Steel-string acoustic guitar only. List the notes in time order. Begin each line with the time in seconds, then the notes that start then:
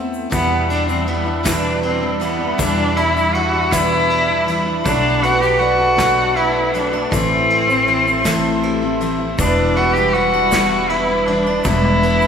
Already playing: A3 B3 C4 E4
0.30 E2 B2 E3 G3 D4 E4
0.88 E3 G3 D4 E4
1.07 E3 G3 D4 E4
1.25 E3 G3 D4 E4
1.43 E2 B2 E3 G3 D4 E4
2.01 E3 G3 D4 E4
2.20 E3 G3 D4 E4
2.39 E3 G3 D4 E4
2.58 E2 B2 E3 G3 D4 E4
3.14 E3 G3 D4 E4
3.33 E3 G3 D4 E4
3.52 E3 G3 D4 E4
3.71 E2 B2 E3 G3 D4 E4
4.28 E3 G3 D4 E4
4.47 E3 G3 D4 E4
4.66 E3 G3 D4 E4
4.84 B2 F#3 A3 D4 F#4
5.40 A3 D4 F#4
5.59 F#3 A3 D4 F#4
5.78 A3 D4 F#4
5.96 B2 F#3 A3 D4 F#4
6.54 A3 D4 F#4
6.74 F#3 A3 D4 F#4
6.92 A3 D4 F#4
7.11 A2 E3 A3 C4 E4
7.67 A3 C4 E4
7.87 E3 A3 C4 E4
8.05 A3 C4 E4
8.24 A2 E3 A3 C4 E4
8.82 A3 C4 E4
9.01 E3 A3 C4 E4
9.18 A3 C4 E4
9.38 E2 B2 E3 G3 D4 E4
9.95 E3 G3 D4 E4
10.14 E3 G3 D4 E4
10.32 E3 G3 D4 E4
10.50 E2 B2 E3 G3 D4 E4
11.08 E3 G3 D4 E4
11.26 E3 G3 D4 E4
11.46 E3 G3 D4 E4
11.65 E2 B2 E3 G3 D4 E4
12.21 G3 D4 E4